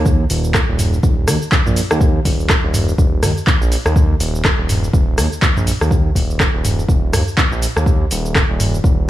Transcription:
Already playing: D#2
0.06 kick, cabasa
0.30 D#1, open hi-hat, cabasa
0.44 cabasa
0.54 kick, cross-stick, clap, cabasa
0.69 D#1
0.79 mid tom, open hi-hat, cabasa
0.93 cabasa
1.03 D#1, kick, cabasa
1.28 D#2, cross-stick, open hi-hat, cabasa
1.42 cabasa
1.52 kick, clap, cabasa
1.66 A#1, mid tom, cabasa
1.76 open hi-hat, cabasa
1.91 D#2, cross-stick, cabasa
2.01 kick, cabasa
2.25 D#1, kick, open hi-hat, cabasa
2.40 cabasa
2.50 kick, cross-stick, clap, cabasa
2.64 D#1
2.74 mid tom, open hi-hat, cabasa
2.88 cabasa
2.98 D#1, kick, cabasa
3.23 D#2, cross-stick, mid tom, open hi-hat, cabasa
3.37 cabasa
3.47 kick, clap, cabasa
3.61 A#1, cabasa
3.72 open hi-hat, cabasa
3.85 D#2, cross-stick, cabasa
3.96 kick, cabasa
4.20 D#1, open hi-hat, cabasa
4.35 cabasa
4.45 kick, cross-stick, clap, cabasa
4.58 D#1
4.69 mid tom, open hi-hat, cabasa
4.84 cabasa
4.93 D#1, kick, cabasa
5.18 D#2, cross-stick, open hi-hat, cabasa
5.32 cabasa
5.42 kick, clap, cabasa
5.57 A#1, mid tom, cabasa
5.67 open hi-hat, cabasa
5.81 D#2, cross-stick, cabasa
5.91 kick, cabasa
6.15 D#1, kick, open hi-hat, cabasa
6.30 cabasa
6.40 kick, cross-stick, clap, cabasa
6.54 D#1
6.65 mid tom, open hi-hat, cabasa
6.79 cabasa
6.89 D#1, kick, cabasa
7.13 D#2, cross-stick, mid tom, open hi-hat, cabasa
7.28 cabasa
7.37 kick, clap, cabasa
7.51 A#1, cabasa
7.62 open hi-hat, cabasa
7.76 D#2, cross-stick, cabasa
7.86 kick, cabasa
8.11 D#1, open hi-hat, cabasa
8.26 cabasa
8.35 kick, cross-stick, clap, cabasa
8.50 D#1
8.60 mid tom, open hi-hat, cabasa
8.74 cabasa
8.84 D#1, kick, cabasa

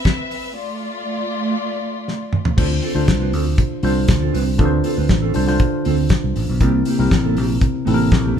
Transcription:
Already playing: C4 B4 E5
0.05 kick, snare, closed hi-hat
0.31 open hi-hat
0.56 A3 F4 D5
2.08 snare
2.33 mid tom
2.45 floor tom
2.57 D2 D3 C4 D4 F4 A4 C5, kick, crash
2.69 muted clean electric guitar stroke
2.82 C4 F4 A4, open hi-hat
2.94 D2 D3 C4 D4 F4 A4 C5
3.08 C2, muted clean electric guitar stroke, kick, snare, closed hi-hat
3.20 C4 F4 B4
3.32 D2 C4 F4 A4, open hi-hat
3.45 muted clean electric guitar stroke
3.58 muted clean electric guitar stroke, kick, closed hi-hat
3.71 muted clean electric guitar stroke
3.83 C2 D3 C4 D4 F4 A4 C5, open hi-hat
3.95 muted clean electric guitar stroke
4.08 D2, kick, snare, closed hi-hat
4.21 C4 F4 A4
4.33 C2 C4 F4 B4, open hi-hat
4.46 muted clean electric guitar stroke
4.58 D2 D3 C4 D4 F4 A4 B4, kick, closed hi-hat
4.65 C5
4.72 muted clean electric guitar stroke
4.84 C4 F4 A4, open hi-hat
4.97 D2 C4 F4 B4
5.09 A1, kick, snare, closed hi-hat
5.22 C4 F4 A4
5.34 C2 D3 C4 D4 F4 A4 C5, open hi-hat
5.47 D3 D4 F4 C5, muted clean electric guitar stroke, snare
5.59 muted clean electric guitar stroke, kick, closed hi-hat
5.73 muted clean electric guitar stroke
5.85 D2 C4 F4 A4, open hi-hat
5.98 muted clean electric guitar stroke
6.09 kick, snare, closed hi-hat
6.24 C2, muted clean electric guitar stroke
6.36 A1, open hi-hat
6.49 B1, muted clean electric guitar stroke
6.60 C2 C3 A#3 C4 E4 G4 A#4, kick, closed hi-hat
6.74 muted clean electric guitar stroke
6.85 A#3 E4 G4, open hi-hat
6.98 C2 C3 A#3 C4 E4 G4 A#4
7.11 A1, muted clean electric guitar stroke, kick, snare, closed hi-hat
7.24 A#3 E4 A4
7.37 A#1 A#3 E4 G4, open hi-hat
7.49 muted clean electric guitar stroke
7.61 muted clean electric guitar stroke, kick, closed hi-hat
7.74 muted clean electric guitar stroke
7.85 A1 C3 A#3 C4 E4 G4 A4, open hi-hat
7.94 A#4
8.00 muted clean electric guitar stroke
8.11 A#1, kick, snare, closed hi-hat
8.24 A#3 E4 G4
8.35 A#3

